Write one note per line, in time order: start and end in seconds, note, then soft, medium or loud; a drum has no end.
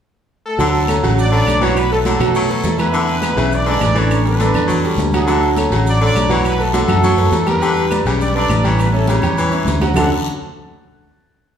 0.46 1.00 A3 medium
0.46 1.00 A4 loud
0.58 1.00 D2 medium
0.58 0.83 D3 loud
0.58 0.83 F#3 medium
0.58 0.83 F#4 medium
0.58 0.83 F#5 medium
0.58 high conga soft
0.58 low agogo medium
0.58 long guiro medium
0.58 maracas medium
0.74 high conga soft
0.74 maracas soft
0.88 1.00 A3 medium
0.88 1.00 A4 medium
0.88 1.00 C#5 medium
0.88 high conga loud
0.88 low timbale medium
0.88 low agogo loud
0.88 short guiro medium
0.88 claves medium
0.88 maracas medium
1.03 1.44 A1 medium
1.03 1.19 C#3 medium
1.03 1.27 F#3 medium
1.03 1.27 F#4 medium
1.03 1.27 F#5 medium
1.03 high conga soft
1.03 low agogo medium
1.03 short guiro medium
1.03 maracas soft
1.18 1.32 D4 medium
1.18 1.32 D5 loud
1.18 long guiro medium
1.18 maracas medium
1.31 1.47 D3 medium
1.31 1.56 A3 medium
1.31 1.60 D4 medium
1.31 1.56 A4 medium
1.31 1.56 C#5 medium
1.31 1.60 D5 loud
1.31 low agogo medium
1.31 maracas soft
1.47 2.15 B1 loud
1.47 high conga medium
1.47 low timbale medium
1.47 low agogo loud
1.47 short guiro medium
1.47 claves medium
1.47 maracas medium
1.61 1.84 E3 medium
1.61 1.85 F#3 medium
1.61 1.77 C#4 medium
1.61 1.85 F#4 loud
1.61 1.77 C#5 loud
1.61 1.86 F#5 medium
1.61 high conga medium
1.61 low agogo loud
1.61 short guiro medium
1.61 maracas soft
1.77 1.92 B3 medium
1.77 1.92 B4 loud
1.77 high conga soft
1.77 low agogo loud
1.77 long guiro medium
1.77 claves medium
1.77 maracas medium
1.91 2.03 A3 medium
1.91 2.00 A3 medium
1.91 2.03 A4 medium
1.91 1.99 A4 loud
1.91 2.03 B4 medium
1.91 maracas soft
2.05 2.21 D3 medium
2.05 2.17 F#3 medium
2.05 2.76 A3 medium
2.05 2.18 F#4 medium
2.05 2.76 A4 loud
2.05 2.18 F#5 medium
2.05 high conga loud
2.05 low timbale medium
2.05 low agogo medium
2.05 short guiro medium
2.05 maracas medium
2.19 2.61 B2 loud
2.19 2.44 F#3 medium
2.19 2.44 F#4 medium
2.19 2.44 F#5 medium
2.19 low conga medium
2.19 low agogo loud
2.19 short guiro medium
2.19 claves medium
2.19 maracas soft
2.35 2.69 F#3 loud
2.35 long guiro medium
2.35 maracas medium
2.49 2.73 A3 medium
2.49 2.74 A4 medium
2.49 2.74 B4 medium
2.49 high conga soft
2.49 low agogo medium
2.49 maracas soft
2.64 3.32 E2 loud
2.64 high conga loud
2.64 low timbale medium
2.64 low agogo medium
2.64 short guiro medium
2.64 maracas medium
2.78 2.90 E3 medium
2.78 3.53 B3 medium
2.78 2.91 E4 loud
2.78 3.53 B4 loud
2.78 2.91 E5 medium
2.78 high conga medium
2.78 low agogo loud
2.78 short guiro medium
2.78 claves medium
2.78 maracas soft
2.92 3.17 D3 loud
2.92 3.17 E3 loud
2.92 3.17 E4 medium
2.92 3.17 E5 medium
2.92 high conga soft
2.92 low agogo medium
2.92 long guiro medium
2.92 maracas medium
3.08 high conga soft
3.08 maracas soft
3.21 3.34 G#3 medium
3.21 3.34 G#4 medium
3.21 3.34 B4 medium
3.21 high conga loud
3.21 low timbale medium
3.21 low agogo loud
3.21 short guiro medium
3.21 claves medium
3.21 maracas medium
3.36 3.78 B1 loud
3.36 3.52 C#3 medium
3.36 3.61 E3 medium
3.36 3.61 E4 medium
3.36 3.61 E5 loud
3.36 high conga soft
3.36 low agogo medium
3.36 short guiro medium
3.36 maracas soft
3.52 3.68 D4 medium
3.52 3.68 D5 loud
3.52 high conga soft
3.52 long guiro medium
3.52 maracas medium
3.66 3.82 D3 medium
3.66 3.91 G#3 medium
3.66 3.95 D4 medium
3.66 3.91 G#4 medium
3.66 3.91 B4 medium
3.66 3.95 D5 loud
3.66 high conga soft
3.66 low agogo medium
3.66 maracas soft
3.81 4.49 A1 loud
3.81 high conga medium
3.81 low timbale medium
3.81 low agogo loud
3.81 short guiro medium
3.81 claves medium
3.81 maracas medium
3.95 4.19 D3 medium
3.95 4.18 E3 medium
3.95 4.27 C#4 medium
3.95 4.20 D4 loud
3.95 4.27 C#5 loud
3.95 4.20 D5 loud
3.95 high conga medium
3.95 low agogo loud
3.95 short guiro medium
3.95 maracas soft
4.11 high conga soft
4.11 low agogo loud
4.11 long guiro medium
4.11 claves medium
4.11 maracas medium
4.25 4.37 G3 medium
4.25 4.83 B3 medium
4.25 4.38 G4 medium
4.25 4.37 A4 medium
4.25 4.83 B4 medium
4.25 high conga soft
4.25 maracas soft
4.39 4.55 D3 medium
4.39 4.52 D3 medium
4.39 4.53 D4 medium
4.39 4.53 D5 medium
4.39 high conga loud
4.39 low timbale medium
4.39 low agogo medium
4.39 short guiro medium
4.39 maracas medium
4.54 4.95 E2 loud
4.54 4.79 D3 medium
4.54 4.79 D4 medium
4.54 4.79 D5 medium
4.54 low conga medium
4.54 low agogo loud
4.54 short guiro medium
4.54 claves medium
4.54 maracas soft
4.68 5.01 F#3 medium
4.68 high conga soft
4.68 low conga medium
4.68 long guiro medium
4.68 maracas medium
4.83 5.08 G3 medium
4.83 5.08 G4 medium
4.83 5.08 A4 medium
4.83 high conga soft
4.83 low agogo medium
4.83 maracas soft
4.98 5.66 D2 loud
4.98 high conga medium
4.98 low timbale medium
4.98 low agogo medium
4.98 short guiro medium
4.98 maracas medium
5.12 5.26 F#3 medium
5.12 5.69 A3 medium
5.12 5.26 F#4 medium
5.12 5.68 A4 loud
5.12 5.26 F#5 loud
5.12 high conga medium
5.12 low agogo loud
5.12 short guiro medium
5.12 claves medium
5.12 maracas soft
5.27 5.50 D3 loud
5.27 5.52 F#3 medium
5.27 5.52 F#4 medium
5.27 5.52 F#5 loud
5.27 high conga soft
5.27 low agogo medium
5.27 long guiro medium
5.27 maracas medium
5.42 high conga soft
5.42 maracas soft
5.57 5.69 A3 medium
5.57 5.69 A4 medium
5.57 5.70 C#5 medium
5.57 high conga loud
5.57 low timbale medium
5.57 low agogo loud
5.57 short guiro medium
5.57 claves medium
5.57 maracas medium
5.71 6.12 A1 loud
5.71 5.87 C#3 medium
5.71 5.96 F#3 medium
5.71 5.96 F#4 medium
5.71 5.96 F#5 medium
5.71 high conga soft
5.71 low agogo medium
5.71 short guiro medium
5.71 maracas soft
5.86 6.01 D4 medium
5.86 6.01 D5 loud
5.86 high conga soft
5.86 long guiro medium
5.86 maracas medium
6.01 6.16 D3 medium
6.01 6.25 A3 medium
6.01 6.29 D4 medium
6.01 6.25 A4 medium
6.01 6.25 C#5 medium
6.01 6.29 D5 loud
6.01 high conga soft
6.01 low agogo loud
6.01 maracas soft
6.15 6.83 B1 loud
6.15 high conga medium
6.15 low timbale medium
6.15 low agogo loud
6.15 short guiro medium
6.15 claves medium
6.15 maracas medium
6.29 6.54 E3 medium
6.29 6.54 F#3 loud
6.29 6.46 C#4 medium
6.29 6.54 F#4 medium
6.29 6.46 C#5 loud
6.29 6.54 F#5 loud
6.29 high conga medium
6.29 low agogo medium
6.29 short guiro medium
6.29 maracas soft
6.44 6.60 B3 medium
6.44 6.60 B4 loud
6.44 high conga soft
6.44 low agogo loud
6.44 long guiro medium
6.44 claves medium
6.44 maracas medium
6.58 6.71 A3 medium
6.58 6.71 A4 medium
6.58 6.74 A4 medium
6.58 6.72 B4 medium
6.58 high conga soft
6.58 maracas soft
6.63 6.75 A3 medium
6.73 6.89 D3 medium
6.73 6.86 F#3 medium
6.73 7.44 A3 medium
6.73 6.86 F#4 medium
6.73 7.44 A4 loud
6.73 6.86 F#5 medium
6.73 high conga loud
6.73 low timbale medium
6.73 low agogo medium
6.73 short guiro medium
6.73 maracas medium
6.88 7.16 F#2 loud
6.88 7.12 F#3 medium
6.88 7.12 F#4 medium
6.88 7.13 F#5 loud
6.88 low conga medium
6.88 low agogo loud
6.88 short guiro medium
6.88 claves medium
6.88 maracas soft
7.03 7.37 F#3 medium
7.03 high conga soft
7.03 low conga medium
7.03 long guiro medium
7.03 maracas medium
7.17 7.31 F#2 medium
7.17 7.42 A3 medium
7.17 7.42 A4 medium
7.17 7.42 B4 medium
7.17 high conga soft
7.17 low agogo medium
7.17 maracas soft
7.32 8.00 E2 loud
7.32 high conga medium
7.32 low timbale medium
7.32 low agogo medium
7.32 short guiro medium
7.32 maracas medium
7.46 7.59 G3 medium
7.46 8.03 B3 medium
7.46 7.59 G4 medium
7.46 8.03 B4 loud
7.46 7.59 G5 medium
7.46 high conga medium
7.46 low agogo loud
7.46 short guiro medium
7.46 claves medium
7.46 maracas soft
7.62 7.86 D3 loud
7.62 7.86 G3 medium
7.62 7.86 G4 loud
7.62 7.86 G5 loud
7.62 high conga soft
7.62 low agogo medium
7.62 long guiro medium
7.62 maracas medium
7.76 high conga soft
7.76 maracas soft
7.91 8.03 B3 medium
7.91 8.04 B4 medium
7.91 8.04 D5 medium
7.91 high conga loud
7.91 low timbale medium
7.91 low agogo loud
7.91 short guiro medium
7.91 claves medium
7.91 maracas medium
8.05 8.47 B1 medium
8.05 8.22 C#3 medium
8.05 8.30 G3 medium
8.05 8.30 G4 medium
8.05 8.31 G5 medium
8.05 high conga soft
8.05 low agogo loud
8.05 short guiro medium
8.05 maracas soft
8.21 8.35 D4 medium
8.21 8.35 D5 loud
8.21 high conga soft
8.21 long guiro medium
8.21 maracas medium
8.35 8.52 D3 medium
8.35 8.59 B3 medium
8.35 8.63 D4 medium
8.35 8.59 B4 medium
8.35 8.60 D5 medium
8.35 8.63 D5 loud
8.35 high conga soft
8.35 low agogo medium
8.35 maracas soft
8.50 9.18 A1 loud
8.50 high conga medium
8.50 low timbale medium
8.50 low agogo loud
8.50 short guiro medium
8.50 claves medium
8.50 maracas medium
8.63 8.88 E3 medium
8.63 8.88 G3 loud
8.63 8.79 C#4 medium
8.63 8.89 G4 loud
8.63 8.79 C#5 loud
8.63 8.89 G5 medium
8.63 high conga medium
8.63 low agogo medium
8.63 short guiro medium
8.63 maracas soft
8.78 8.94 B3 medium
8.78 8.94 B4 medium
8.78 high conga soft
8.78 low agogo loud
8.78 long guiro medium
8.78 claves medium
8.78 maracas medium
8.93 9.08 A3 medium
8.93 9.05 C#4 medium
8.93 9.09 A4 medium
8.93 9.05 C#5 medium
8.93 9.06 E5 medium
8.93 high conga soft
8.93 maracas soft
9.08 9.24 C#3 medium
9.08 9.20 G3 medium
9.08 9.82 C#4 medium
9.08 9.21 G4 medium
9.08 9.83 C#5 medium
9.08 9.21 G5 medium
9.08 high conga loud
9.08 low timbale medium
9.08 low agogo medium
9.08 short guiro medium
9.08 maracas medium
9.22 9.64 E2 medium
9.22 9.47 G3 medium
9.22 9.47 G4 medium
9.22 9.48 G5 medium
9.22 low conga medium
9.22 high timbale medium
9.22 low agogo loud
9.22 short guiro medium
9.22 claves medium
9.22 maracas soft
9.37 9.71 E3 loud
9.37 high conga soft
9.37 long guiro medium
9.37 maracas medium
9.50 9.76 C#4 medium
9.50 9.76 C#5 medium
9.50 9.76 E5 medium
9.50 high conga soft
9.50 low agogo medium
9.50 maracas soft
9.65 9.93 D2 medium
9.65 high conga medium
9.65 low timbale medium
9.65 low agogo medium
9.65 short guiro medium
9.65 maracas medium
9.80 9.94 F#3 medium
9.80 9.94 F#4 medium
9.80 9.94 F#5 medium
9.80 high conga medium
9.80 low timbale loud
9.80 low agogo loud
9.80 short guiro medium
9.80 claves medium
9.80 maracas soft
9.94 10.10 D2 loud
9.94 10.10 D3 loud
9.94 10.07 D3 medium
9.94 10.10 A3 medium
9.94 10.10 C#4 medium
9.94 10.10 D4 medium
9.94 10.10 F#4 medium
9.94 10.10 A4 loud
9.94 10.11 F#5 medium
9.94 low conga loud
9.94 low timbale loud
9.94 long guiro loud
9.94 claves loud
9.94 maracas loud